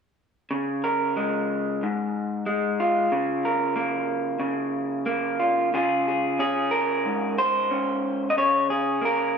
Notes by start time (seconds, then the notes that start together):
0.51 C#3
0.84 A#4
1.16 G#3
1.83 G#2
2.46 G#3
2.80 F4
3.12 C#3
3.45 A#4
3.76 A#3
4.40 C#3
5.06 A#3
5.40 F4
5.74 C#3 F4 G#4
6.08 G#4
6.39 C#4 G#4
6.71 A#4
7.05 G#2
7.38 C5
7.71 C#4
8.30 D#5
8.37 C#3 C#5
8.70 G#4
9.01 A#3 A#4